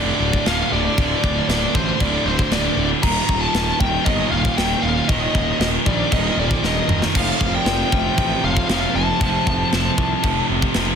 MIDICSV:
0, 0, Header, 1, 7, 480
1, 0, Start_track
1, 0, Tempo, 514580
1, 909, Time_signature, 4, 2, 24, 8
1, 10216, End_track
2, 0, Start_track
2, 0, Title_t, "Lead electric guitar"
2, 0, Program_c, 0, 29
2, 0, Note_on_c, 0, 74, 93
2, 437, Note_off_c, 0, 74, 0
2, 441, Note_on_c, 0, 77, 111
2, 675, Note_off_c, 0, 77, 0
2, 679, Note_on_c, 0, 74, 101
2, 1357, Note_off_c, 0, 74, 0
2, 1396, Note_on_c, 0, 74, 95
2, 1628, Note_on_c, 0, 72, 90
2, 1640, Note_off_c, 0, 74, 0
2, 1873, Note_on_c, 0, 74, 91
2, 1876, Note_off_c, 0, 72, 0
2, 2107, Note_on_c, 0, 72, 92
2, 2119, Note_off_c, 0, 74, 0
2, 2355, Note_on_c, 0, 74, 102
2, 2356, Note_off_c, 0, 72, 0
2, 2688, Note_off_c, 0, 74, 0
2, 2825, Note_on_c, 0, 82, 126
2, 3182, Note_on_c, 0, 81, 117
2, 3199, Note_off_c, 0, 82, 0
2, 3542, Note_off_c, 0, 81, 0
2, 3545, Note_on_c, 0, 79, 93
2, 3776, Note_on_c, 0, 75, 98
2, 3796, Note_off_c, 0, 79, 0
2, 4022, Note_off_c, 0, 75, 0
2, 4026, Note_on_c, 0, 77, 88
2, 4263, Note_on_c, 0, 79, 94
2, 4276, Note_off_c, 0, 77, 0
2, 4498, Note_on_c, 0, 77, 95
2, 4515, Note_off_c, 0, 79, 0
2, 4728, Note_off_c, 0, 77, 0
2, 4746, Note_on_c, 0, 75, 110
2, 5195, Note_off_c, 0, 75, 0
2, 5221, Note_on_c, 0, 75, 90
2, 5288, Note_off_c, 0, 75, 0
2, 5470, Note_on_c, 0, 74, 92
2, 5712, Note_off_c, 0, 74, 0
2, 5715, Note_on_c, 0, 75, 98
2, 5937, Note_off_c, 0, 75, 0
2, 5965, Note_on_c, 0, 74, 94
2, 6206, Note_off_c, 0, 74, 0
2, 6210, Note_on_c, 0, 75, 92
2, 6537, Note_off_c, 0, 75, 0
2, 6687, Note_on_c, 0, 77, 106
2, 7039, Note_on_c, 0, 79, 110
2, 7051, Note_off_c, 0, 77, 0
2, 7390, Note_off_c, 0, 79, 0
2, 7401, Note_on_c, 0, 79, 99
2, 7877, Note_on_c, 0, 77, 105
2, 7891, Note_off_c, 0, 79, 0
2, 8352, Note_on_c, 0, 81, 90
2, 8369, Note_off_c, 0, 77, 0
2, 9755, Note_off_c, 0, 81, 0
2, 10216, End_track
3, 0, Start_track
3, 0, Title_t, "Distorted electric guitar"
3, 0, Program_c, 1, 30
3, 0, Note_on_c, 1, 38, 74
3, 0, Note_on_c, 1, 45, 72
3, 0, Note_on_c, 1, 50, 88
3, 410, Note_off_c, 1, 38, 0
3, 410, Note_off_c, 1, 50, 0
3, 417, Note_off_c, 1, 45, 0
3, 421, Note_on_c, 1, 38, 81
3, 434, Note_on_c, 1, 45, 84
3, 444, Note_on_c, 1, 50, 90
3, 891, Note_off_c, 1, 38, 0
3, 897, Note_off_c, 1, 45, 0
3, 901, Note_on_c, 1, 38, 96
3, 902, Note_off_c, 1, 50, 0
3, 913, Note_on_c, 1, 45, 103
3, 924, Note_on_c, 1, 50, 113
3, 1611, Note_off_c, 1, 38, 0
3, 1611, Note_off_c, 1, 50, 0
3, 1617, Note_off_c, 1, 45, 0
3, 1623, Note_on_c, 1, 50, 82
3, 1636, Note_on_c, 1, 45, 83
3, 1646, Note_on_c, 1, 38, 72
3, 2332, Note_off_c, 1, 38, 0
3, 2332, Note_off_c, 1, 50, 0
3, 2339, Note_off_c, 1, 45, 0
3, 2343, Note_on_c, 1, 38, 70
3, 2356, Note_on_c, 1, 45, 84
3, 2366, Note_on_c, 1, 50, 99
3, 2812, Note_off_c, 1, 38, 0
3, 2819, Note_off_c, 1, 45, 0
3, 2821, Note_on_c, 1, 39, 96
3, 2824, Note_off_c, 1, 50, 0
3, 2834, Note_on_c, 1, 46, 113
3, 2847, Note_on_c, 1, 51, 103
3, 3534, Note_off_c, 1, 51, 0
3, 3538, Note_off_c, 1, 46, 0
3, 3538, Note_on_c, 1, 51, 79
3, 3550, Note_on_c, 1, 46, 75
3, 3559, Note_off_c, 1, 39, 0
3, 3563, Note_on_c, 1, 39, 68
3, 4246, Note_off_c, 1, 39, 0
3, 4251, Note_off_c, 1, 51, 0
3, 4256, Note_off_c, 1, 46, 0
3, 4257, Note_on_c, 1, 39, 86
3, 4273, Note_on_c, 1, 46, 93
3, 4282, Note_on_c, 1, 51, 97
3, 4726, Note_off_c, 1, 39, 0
3, 4737, Note_on_c, 1, 39, 93
3, 4738, Note_off_c, 1, 46, 0
3, 4743, Note_off_c, 1, 51, 0
3, 4751, Note_on_c, 1, 46, 96
3, 4764, Note_on_c, 1, 51, 111
3, 5451, Note_off_c, 1, 39, 0
3, 5451, Note_off_c, 1, 51, 0
3, 5458, Note_off_c, 1, 46, 0
3, 5462, Note_on_c, 1, 51, 93
3, 5475, Note_on_c, 1, 46, 68
3, 5486, Note_on_c, 1, 39, 66
3, 6168, Note_off_c, 1, 39, 0
3, 6173, Note_off_c, 1, 51, 0
3, 6179, Note_on_c, 1, 39, 80
3, 6180, Note_off_c, 1, 46, 0
3, 6192, Note_on_c, 1, 46, 80
3, 6206, Note_on_c, 1, 51, 84
3, 6652, Note_off_c, 1, 39, 0
3, 6658, Note_off_c, 1, 46, 0
3, 6661, Note_on_c, 1, 41, 96
3, 6665, Note_off_c, 1, 51, 0
3, 6673, Note_on_c, 1, 48, 95
3, 6687, Note_on_c, 1, 53, 111
3, 7370, Note_off_c, 1, 53, 0
3, 7374, Note_on_c, 1, 53, 84
3, 7376, Note_off_c, 1, 48, 0
3, 7387, Note_on_c, 1, 48, 83
3, 7396, Note_off_c, 1, 41, 0
3, 7400, Note_on_c, 1, 41, 78
3, 8087, Note_off_c, 1, 41, 0
3, 8089, Note_off_c, 1, 53, 0
3, 8096, Note_off_c, 1, 48, 0
3, 8098, Note_on_c, 1, 41, 88
3, 8111, Note_on_c, 1, 48, 75
3, 8124, Note_on_c, 1, 53, 91
3, 8571, Note_off_c, 1, 41, 0
3, 8578, Note_off_c, 1, 48, 0
3, 8580, Note_on_c, 1, 41, 91
3, 8584, Note_off_c, 1, 53, 0
3, 8592, Note_on_c, 1, 48, 100
3, 8605, Note_on_c, 1, 53, 105
3, 9292, Note_off_c, 1, 41, 0
3, 9292, Note_off_c, 1, 53, 0
3, 9298, Note_off_c, 1, 48, 0
3, 9303, Note_on_c, 1, 53, 94
3, 9317, Note_on_c, 1, 48, 89
3, 9327, Note_on_c, 1, 41, 68
3, 10012, Note_off_c, 1, 41, 0
3, 10013, Note_off_c, 1, 53, 0
3, 10020, Note_off_c, 1, 48, 0
3, 10023, Note_on_c, 1, 41, 85
3, 10038, Note_on_c, 1, 48, 84
3, 10048, Note_on_c, 1, 53, 92
3, 10216, Note_off_c, 1, 41, 0
3, 10216, Note_off_c, 1, 48, 0
3, 10216, Note_off_c, 1, 53, 0
3, 10216, End_track
4, 0, Start_track
4, 0, Title_t, "Distorted electric guitar"
4, 0, Program_c, 2, 30
4, 0, Note_on_c, 2, 38, 87
4, 0, Note_on_c, 2, 45, 74
4, 0, Note_on_c, 2, 50, 98
4, 892, Note_off_c, 2, 38, 0
4, 898, Note_off_c, 2, 45, 0
4, 903, Note_off_c, 2, 50, 0
4, 906, Note_on_c, 2, 38, 87
4, 917, Note_on_c, 2, 45, 96
4, 927, Note_on_c, 2, 50, 99
4, 1850, Note_off_c, 2, 38, 0
4, 1859, Note_off_c, 2, 45, 0
4, 1861, Note_on_c, 2, 38, 87
4, 1864, Note_off_c, 2, 50, 0
4, 1874, Note_on_c, 2, 45, 94
4, 1883, Note_on_c, 2, 50, 104
4, 2812, Note_off_c, 2, 38, 0
4, 2818, Note_off_c, 2, 45, 0
4, 2819, Note_on_c, 2, 39, 84
4, 2823, Note_off_c, 2, 50, 0
4, 2832, Note_on_c, 2, 46, 104
4, 2840, Note_on_c, 2, 51, 101
4, 3773, Note_off_c, 2, 39, 0
4, 3777, Note_off_c, 2, 46, 0
4, 3777, Note_on_c, 2, 39, 90
4, 3788, Note_on_c, 2, 46, 91
4, 3792, Note_off_c, 2, 51, 0
4, 3796, Note_on_c, 2, 51, 91
4, 4730, Note_off_c, 2, 39, 0
4, 4736, Note_off_c, 2, 46, 0
4, 4740, Note_off_c, 2, 51, 0
4, 4740, Note_on_c, 2, 39, 78
4, 4754, Note_on_c, 2, 46, 95
4, 4764, Note_on_c, 2, 51, 92
4, 5692, Note_off_c, 2, 39, 0
4, 5699, Note_off_c, 2, 46, 0
4, 5702, Note_on_c, 2, 39, 86
4, 5704, Note_off_c, 2, 51, 0
4, 5714, Note_on_c, 2, 46, 102
4, 5725, Note_on_c, 2, 51, 94
4, 6653, Note_off_c, 2, 39, 0
4, 6659, Note_off_c, 2, 46, 0
4, 6665, Note_off_c, 2, 51, 0
4, 6665, Note_on_c, 2, 41, 88
4, 6679, Note_on_c, 2, 48, 84
4, 6688, Note_on_c, 2, 53, 94
4, 7609, Note_off_c, 2, 41, 0
4, 7620, Note_on_c, 2, 41, 73
4, 7622, Note_off_c, 2, 48, 0
4, 7626, Note_off_c, 2, 53, 0
4, 7633, Note_on_c, 2, 48, 95
4, 7643, Note_on_c, 2, 53, 98
4, 8572, Note_off_c, 2, 41, 0
4, 8579, Note_off_c, 2, 48, 0
4, 8584, Note_off_c, 2, 53, 0
4, 8586, Note_on_c, 2, 41, 96
4, 8598, Note_on_c, 2, 48, 92
4, 8606, Note_on_c, 2, 53, 91
4, 9532, Note_off_c, 2, 41, 0
4, 9540, Note_off_c, 2, 48, 0
4, 9543, Note_on_c, 2, 41, 85
4, 9545, Note_off_c, 2, 53, 0
4, 9554, Note_on_c, 2, 48, 92
4, 9566, Note_on_c, 2, 53, 89
4, 10216, Note_off_c, 2, 41, 0
4, 10216, Note_off_c, 2, 48, 0
4, 10216, Note_off_c, 2, 53, 0
4, 10216, End_track
5, 0, Start_track
5, 0, Title_t, "French horn"
5, 0, Program_c, 3, 60
5, 5725, Note_on_c, 3, 43, 89
5, 5943, Note_off_c, 3, 43, 0
5, 5951, Note_on_c, 3, 41, 72
5, 6175, Note_off_c, 3, 41, 0
5, 6192, Note_on_c, 3, 43, 86
5, 6527, Note_off_c, 3, 43, 0
5, 6677, Note_on_c, 3, 45, 78
5, 7010, Note_off_c, 3, 45, 0
5, 7030, Note_on_c, 3, 46, 86
5, 7366, Note_off_c, 3, 46, 0
5, 7390, Note_on_c, 3, 48, 84
5, 7838, Note_off_c, 3, 48, 0
5, 7875, Note_on_c, 3, 45, 82
5, 8321, Note_off_c, 3, 45, 0
5, 8342, Note_on_c, 3, 48, 91
5, 9750, Note_off_c, 3, 48, 0
5, 10216, End_track
6, 0, Start_track
6, 0, Title_t, "Picked electric bass"
6, 0, Program_c, 4, 34
6, 0, Note_on_c, 4, 29, 85
6, 98, Note_off_c, 4, 29, 0
6, 186, Note_on_c, 4, 26, 93
6, 335, Note_off_c, 4, 26, 0
6, 430, Note_on_c, 4, 26, 92
6, 578, Note_off_c, 4, 26, 0
6, 671, Note_on_c, 4, 26, 90
6, 819, Note_off_c, 4, 26, 0
6, 911, Note_on_c, 4, 26, 103
6, 1059, Note_off_c, 4, 26, 0
6, 1151, Note_on_c, 4, 26, 89
6, 1299, Note_off_c, 4, 26, 0
6, 1384, Note_on_c, 4, 26, 98
6, 1534, Note_off_c, 4, 26, 0
6, 1627, Note_on_c, 4, 33, 86
6, 1777, Note_off_c, 4, 33, 0
6, 1868, Note_on_c, 4, 26, 92
6, 2017, Note_off_c, 4, 26, 0
6, 2101, Note_on_c, 4, 26, 105
6, 2252, Note_off_c, 4, 26, 0
6, 2341, Note_on_c, 4, 26, 103
6, 2493, Note_off_c, 4, 26, 0
6, 2583, Note_on_c, 4, 26, 93
6, 2734, Note_off_c, 4, 26, 0
6, 2828, Note_on_c, 4, 27, 101
6, 2977, Note_off_c, 4, 27, 0
6, 3066, Note_on_c, 4, 27, 90
6, 3216, Note_off_c, 4, 27, 0
6, 3306, Note_on_c, 4, 27, 89
6, 3456, Note_off_c, 4, 27, 0
6, 3546, Note_on_c, 4, 27, 89
6, 3696, Note_off_c, 4, 27, 0
6, 3789, Note_on_c, 4, 31, 98
6, 3939, Note_off_c, 4, 31, 0
6, 4022, Note_on_c, 4, 27, 102
6, 4173, Note_off_c, 4, 27, 0
6, 4267, Note_on_c, 4, 27, 104
6, 4417, Note_off_c, 4, 27, 0
6, 4506, Note_on_c, 4, 27, 88
6, 4656, Note_off_c, 4, 27, 0
6, 4747, Note_on_c, 4, 27, 94
6, 4897, Note_off_c, 4, 27, 0
6, 4987, Note_on_c, 4, 27, 96
6, 5137, Note_off_c, 4, 27, 0
6, 5221, Note_on_c, 4, 27, 81
6, 5373, Note_off_c, 4, 27, 0
6, 5470, Note_on_c, 4, 34, 87
6, 5620, Note_off_c, 4, 34, 0
6, 5708, Note_on_c, 4, 27, 100
6, 5858, Note_off_c, 4, 27, 0
6, 5942, Note_on_c, 4, 27, 99
6, 6094, Note_off_c, 4, 27, 0
6, 6178, Note_on_c, 4, 27, 91
6, 6331, Note_off_c, 4, 27, 0
6, 6417, Note_on_c, 4, 27, 88
6, 6571, Note_off_c, 4, 27, 0
6, 6670, Note_on_c, 4, 29, 107
6, 6820, Note_off_c, 4, 29, 0
6, 6908, Note_on_c, 4, 29, 96
6, 7058, Note_off_c, 4, 29, 0
6, 7141, Note_on_c, 4, 29, 89
6, 7294, Note_off_c, 4, 29, 0
6, 7392, Note_on_c, 4, 29, 90
6, 7541, Note_off_c, 4, 29, 0
6, 7627, Note_on_c, 4, 33, 94
6, 7778, Note_off_c, 4, 33, 0
6, 7868, Note_on_c, 4, 29, 94
6, 8019, Note_off_c, 4, 29, 0
6, 8107, Note_on_c, 4, 29, 100
6, 8258, Note_off_c, 4, 29, 0
6, 8347, Note_on_c, 4, 29, 93
6, 8497, Note_off_c, 4, 29, 0
6, 8587, Note_on_c, 4, 29, 96
6, 8738, Note_off_c, 4, 29, 0
6, 8830, Note_on_c, 4, 29, 98
6, 8980, Note_off_c, 4, 29, 0
6, 9072, Note_on_c, 4, 29, 92
6, 9221, Note_off_c, 4, 29, 0
6, 9306, Note_on_c, 4, 36, 100
6, 9457, Note_off_c, 4, 36, 0
6, 9549, Note_on_c, 4, 29, 98
6, 9699, Note_off_c, 4, 29, 0
6, 9793, Note_on_c, 4, 29, 98
6, 9941, Note_off_c, 4, 29, 0
6, 10031, Note_on_c, 4, 29, 94
6, 10180, Note_off_c, 4, 29, 0
6, 10216, End_track
7, 0, Start_track
7, 0, Title_t, "Drums"
7, 312, Note_on_c, 9, 36, 88
7, 405, Note_off_c, 9, 36, 0
7, 430, Note_on_c, 9, 52, 70
7, 433, Note_on_c, 9, 38, 113
7, 523, Note_off_c, 9, 52, 0
7, 527, Note_off_c, 9, 38, 0
7, 914, Note_on_c, 9, 36, 122
7, 917, Note_on_c, 9, 52, 65
7, 1007, Note_off_c, 9, 36, 0
7, 1010, Note_off_c, 9, 52, 0
7, 1153, Note_on_c, 9, 36, 89
7, 1247, Note_off_c, 9, 36, 0
7, 1394, Note_on_c, 9, 52, 61
7, 1398, Note_on_c, 9, 38, 100
7, 1487, Note_off_c, 9, 52, 0
7, 1491, Note_off_c, 9, 38, 0
7, 1632, Note_on_c, 9, 36, 101
7, 1725, Note_off_c, 9, 36, 0
7, 1867, Note_on_c, 9, 52, 77
7, 1870, Note_on_c, 9, 36, 113
7, 1961, Note_off_c, 9, 52, 0
7, 1963, Note_off_c, 9, 36, 0
7, 2229, Note_on_c, 9, 36, 96
7, 2322, Note_off_c, 9, 36, 0
7, 2346, Note_on_c, 9, 52, 65
7, 2350, Note_on_c, 9, 38, 113
7, 2439, Note_off_c, 9, 52, 0
7, 2443, Note_off_c, 9, 38, 0
7, 2828, Note_on_c, 9, 36, 107
7, 2828, Note_on_c, 9, 49, 102
7, 2828, Note_on_c, 9, 52, 72
7, 2921, Note_off_c, 9, 36, 0
7, 2921, Note_off_c, 9, 49, 0
7, 2921, Note_off_c, 9, 52, 0
7, 3068, Note_on_c, 9, 36, 85
7, 3161, Note_off_c, 9, 36, 0
7, 3306, Note_on_c, 9, 52, 56
7, 3309, Note_on_c, 9, 38, 109
7, 3399, Note_off_c, 9, 52, 0
7, 3403, Note_off_c, 9, 38, 0
7, 3549, Note_on_c, 9, 36, 102
7, 3643, Note_off_c, 9, 36, 0
7, 3789, Note_on_c, 9, 36, 125
7, 3790, Note_on_c, 9, 52, 68
7, 3882, Note_off_c, 9, 36, 0
7, 3883, Note_off_c, 9, 52, 0
7, 4150, Note_on_c, 9, 36, 99
7, 4243, Note_off_c, 9, 36, 0
7, 4271, Note_on_c, 9, 52, 64
7, 4275, Note_on_c, 9, 38, 105
7, 4364, Note_off_c, 9, 52, 0
7, 4368, Note_off_c, 9, 38, 0
7, 4749, Note_on_c, 9, 36, 123
7, 4749, Note_on_c, 9, 52, 69
7, 4842, Note_off_c, 9, 36, 0
7, 4842, Note_off_c, 9, 52, 0
7, 4989, Note_on_c, 9, 36, 73
7, 5082, Note_off_c, 9, 36, 0
7, 5229, Note_on_c, 9, 52, 64
7, 5233, Note_on_c, 9, 38, 109
7, 5323, Note_off_c, 9, 52, 0
7, 5326, Note_off_c, 9, 38, 0
7, 5469, Note_on_c, 9, 36, 97
7, 5562, Note_off_c, 9, 36, 0
7, 5707, Note_on_c, 9, 52, 78
7, 5709, Note_on_c, 9, 36, 114
7, 5801, Note_off_c, 9, 52, 0
7, 5802, Note_off_c, 9, 36, 0
7, 6070, Note_on_c, 9, 36, 94
7, 6164, Note_off_c, 9, 36, 0
7, 6195, Note_on_c, 9, 38, 71
7, 6288, Note_off_c, 9, 38, 0
7, 6428, Note_on_c, 9, 45, 107
7, 6522, Note_off_c, 9, 45, 0
7, 6551, Note_on_c, 9, 38, 92
7, 6644, Note_off_c, 9, 38, 0
7, 6671, Note_on_c, 9, 36, 116
7, 6671, Note_on_c, 9, 52, 68
7, 6671, Note_on_c, 9, 57, 116
7, 6764, Note_off_c, 9, 36, 0
7, 6765, Note_off_c, 9, 52, 0
7, 6765, Note_off_c, 9, 57, 0
7, 6910, Note_on_c, 9, 36, 85
7, 7003, Note_off_c, 9, 36, 0
7, 7145, Note_on_c, 9, 52, 59
7, 7149, Note_on_c, 9, 38, 113
7, 7238, Note_off_c, 9, 52, 0
7, 7242, Note_off_c, 9, 38, 0
7, 7391, Note_on_c, 9, 36, 103
7, 7484, Note_off_c, 9, 36, 0
7, 7628, Note_on_c, 9, 52, 67
7, 7630, Note_on_c, 9, 36, 114
7, 7721, Note_off_c, 9, 52, 0
7, 7723, Note_off_c, 9, 36, 0
7, 7990, Note_on_c, 9, 36, 90
7, 8083, Note_off_c, 9, 36, 0
7, 8109, Note_on_c, 9, 52, 68
7, 8112, Note_on_c, 9, 38, 118
7, 8202, Note_off_c, 9, 52, 0
7, 8206, Note_off_c, 9, 38, 0
7, 8591, Note_on_c, 9, 36, 115
7, 8591, Note_on_c, 9, 52, 64
7, 8684, Note_off_c, 9, 36, 0
7, 8685, Note_off_c, 9, 52, 0
7, 8832, Note_on_c, 9, 36, 82
7, 8926, Note_off_c, 9, 36, 0
7, 9071, Note_on_c, 9, 52, 54
7, 9075, Note_on_c, 9, 38, 97
7, 9164, Note_off_c, 9, 52, 0
7, 9168, Note_off_c, 9, 38, 0
7, 9309, Note_on_c, 9, 36, 106
7, 9403, Note_off_c, 9, 36, 0
7, 9546, Note_on_c, 9, 52, 69
7, 9549, Note_on_c, 9, 36, 124
7, 9640, Note_off_c, 9, 52, 0
7, 9643, Note_off_c, 9, 36, 0
7, 9910, Note_on_c, 9, 36, 101
7, 10003, Note_off_c, 9, 36, 0
7, 10020, Note_on_c, 9, 52, 70
7, 10024, Note_on_c, 9, 38, 120
7, 10113, Note_off_c, 9, 52, 0
7, 10117, Note_off_c, 9, 38, 0
7, 10216, End_track
0, 0, End_of_file